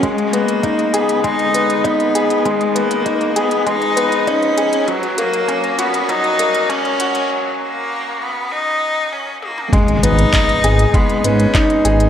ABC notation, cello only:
X:1
M:4/4
L:1/8
Q:1/4=99
K:F#mix
V:1 name="Cello"
G, A,2 B, D2 B,2 | G, A,2 B, D2 C2 | F, A,2 B, D2 C2 | F, A,2 B, D2 C A, |
G, D3 B, C2 z |]